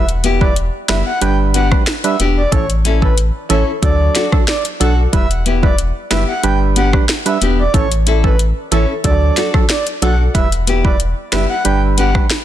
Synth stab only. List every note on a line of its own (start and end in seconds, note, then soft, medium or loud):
0.41 0.53 G3 medium
0.41 0.53 E4 medium
0.41 0.53 B4 medium
0.89 1.02 G3 medium
0.89 1.02 E4 medium
0.89 1.02 B4 medium
1.21 1.67 G3 loud
1.21 1.67 D4 medium
1.21 1.68 B4 loud
1.71 1.83 G3 medium
1.71 1.83 D4 medium
1.71 1.83 B4 medium
2.04 2.16 G3 medium
2.04 2.16 D4 medium
2.04 2.16 B4 medium
2.52 2.65 E3 medium
2.52 2.65 C#4 medium
2.52 2.66 A4 loud
3.02 3.14 E3 medium
3.02 3.14 C#4 medium
3.02 3.14 A4 medium
3.49 3.63 E3 medium
3.49 3.63 C#4 medium
3.49 3.63 A4 loud
3.82 4.28 F#3 loud
3.82 4.28 D4 medium
3.82 4.28 A4 loud
4.32 4.44 F#3 medium
4.32 4.44 D4 medium
4.32 4.44 A4 medium
4.80 4.94 F#3 medium
4.80 4.94 D4 medium
4.80 4.94 A4 medium
5.13 5.26 G3 loud
5.13 5.26 E4 medium
5.13 5.27 B4 loud
5.63 5.75 G3 medium
5.63 5.75 E4 medium
5.63 5.75 B4 medium
6.10 6.24 G3 medium
6.10 6.24 E4 medium
6.10 6.24 B4 medium
6.43 6.89 G3 loud
6.43 6.89 D4 medium
6.43 6.89 B4 loud
6.93 7.05 G3 medium
6.93 7.05 D4 medium
6.93 7.05 B4 medium
7.26 7.38 G3 medium
7.26 7.38 D4 medium
7.26 7.38 B4 medium
7.74 7.87 E3 medium
7.74 7.87 C#4 medium
7.74 7.87 A4 loud
8.24 8.36 E3 medium
8.24 8.36 C#4 medium
8.24 8.36 A4 medium
8.71 8.85 E3 medium
8.71 8.85 C#4 medium
8.71 8.85 A4 medium
9.04 9.50 F#3 loud
9.04 9.50 D4 medium
9.04 9.50 A4 loud
9.54 9.66 F#3 medium
9.54 9.66 D4 medium
9.54 9.66 A4 medium
10.02 10.15 F#3 medium
10.02 10.16 D4 medium
10.02 10.16 A4 medium
10.34 10.48 G3 medium
10.34 10.48 E4 medium
10.34 10.48 B4 loud
10.84 10.96 G3 medium
10.84 10.96 E4 medium
10.84 10.97 B4 medium
11.32 11.46 G3 medium
11.32 11.46 E4 medium
11.32 11.46 B4 medium
11.65 12.11 G3 loud
11.65 12.11 D4 medium
11.65 12.11 B4 loud
12.14 12.27 G3 medium
12.14 12.27 D4 medium
12.14 12.27 B4 medium